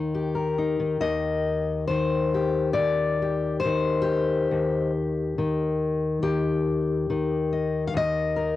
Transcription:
steel-string acoustic guitar
Already playing: D#2 D#3 D#4
0.14 G4
0.35 A#4
0.58 D#4
0.80 D#3
1.01 D#2 D#5
1.88 D#3 C5
2.34 G4
2.73 D5
2.78 D#2
3.22 G4
3.60 C5
3.66 D#3
4.02 G4
4.51 D#2
5.38 D#3
6.22 D#2 G4
7.10 D#3
7.53 D#5
7.87 F5
7.94 D#2 D#5
8.36 A#4

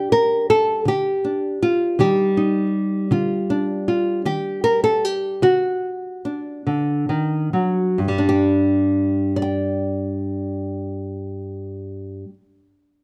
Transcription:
nylon-string guitar
Already playing: C3 G3 G4
0.12 A#4
0.50 A4
0.85 D3 G4
1.25 D4
1.63 F4
1.99 D#3 G3 D#4 G4
2.37 D#4
3.11 D3 F4
3.50 D4
3.88 F4
4.25 D#3 G4
4.64 A#4
4.84 A4
5.05 G4
5.42 D3 F#4
6.25 D4
6.67 D3
7.09 D#3
7.53 F#3
7.98 G2
8.08 G3
8.18 D4
8.29 G4
9.36 D5
9.42 G5

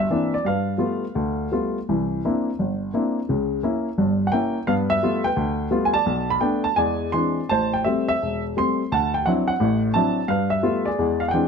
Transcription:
grand piano
Already playing: E5
0.10 E3 A#3 C4 D4
0.34 D5
0.45 G2 B4 F5
0.78 G3 A3 B3 F4
1.15 D2
1.52 G3 A3 B3 F4
1.89 C2 E3
2.25 A#3 C4 D4 E4
2.59 G1
2.94 A#3 C4 D4 E4
3.29 C#2 C#3
3.63 A#3 C#4 E4
3.98 G1 G2
4.27 F#5
4.32 A#3 C#4 E4 G5
4.67 G2 B3 B4 F5
4.90 E5
5.03 G3 A3 B3 F4
5.24 B4 G5
5.36 D2
5.71 G3 A3 B3 F4
5.85 G#5
5.94 D5 A5
6.06 B1
6.30 B5
6.41 A3 B3 D4 G5
6.64 A5
6.76 E2 G#3 D5 G#5
7.12 E3 G#3 C4 D4 C6
7.49 A1 C5 A5
7.73 G5
7.84 G3 A3 C4 E5
8.09 E5
8.22 E1
8.57 G3 A3 C4 C6
8.92 D2 F#5 A5
9.14 G5
9.26 F#3 C4 D4 E4 F#5
9.48 F#5
9.60 A1 A2
9.94 F#3 C4 D4 E4 A5
10.28 G2 B4 F5
10.50 E5
10.63 G3 A3 B3 F4
10.85 G#4 D5
10.99 E2 G#3
11.20 F5
11.28 F#5 G5
11.34 E3 G#3 C4 D4

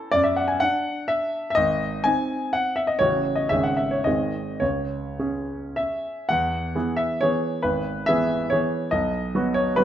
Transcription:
grand piano
Already playing: A4
0.11 F#2 D5
0.23 E5
0.37 F#5
0.48 G#5
0.60 D4 F#5
1.08 E5
1.50 E5
1.55 G#1 D#5
2.04 C4 D#4 G#5
2.53 F#5
2.76 E5
2.87 D#5
2.99 A1 C#3 C#4 F#4 C#5
3.35 D#5
3.49 G#1 C#3 C#4 G#4 E5
3.63 F#5
3.77 E5
3.91 C#5
4.04 G#1 D#3 C4 G#4 D#5
4.60 C#2 C#5
5.19 C#4 G#4
5.76 E5
6.29 E2 F#5
6.75 E3 B3 G#4
6.97 E5
7.21 E3 B3 G#4 C#5
7.63 G#1 B4
8.06 E3 B3 G#4 E5
8.50 E3 B3 G#4 C#5
8.91 B1 D#5
9.35 F#3 B3 F#4
9.54 C#5
9.76 F#3 B3 F#4 B4

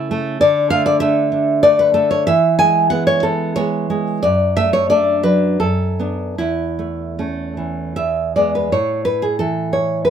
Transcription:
nylon-string guitar
Already playing: C#3 C#4 E4
0.11 A3
0.41 D3 D5
0.70 A3 F5
0.86 D5
1.00 A3 D4 E5
1.32 D4
1.63 A3 D4 D5
1.79 B4
1.94 A3 A4
2.11 C#5
2.27 E3 E5
2.59 G#3 G#5
2.90 G#3 B3 F#5
3.07 C#5
3.23 B3 A4
3.56 G#3 B3 C#5
3.90 G#3
4.23 F#2 D5
4.57 A3 E5
4.73 C#5
4.90 A3 D4 D5
5.23 F#3 B4
5.60 F#2 A4
5.99 B3 D4
6.38 E2 E4
6.79 A3
7.19 A3 C#4
7.57 E3
7.96 E2 E5
8.36 G#3 B3 D5
8.55 B4
8.72 A2 C#5
9.05 B4
9.22 G#4
9.39 E3 A4
9.73 C#5
10.05 B4

